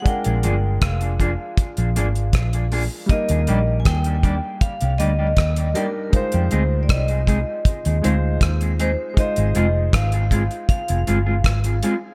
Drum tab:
HH |xxx-xxx-xxxxxxo-|xxx-xxx-xxx-xxx-|xxx-xxx-xxx-xxx-|xxx-xxxxxxx-xxx-|
SD |----r-------r---|----r-------r---|----r-------r---|----r-------r---|
BD |o---o-o-o---o---|o---o-o-o---o---|o---o-o-o---o---|o---o-o-o---o---|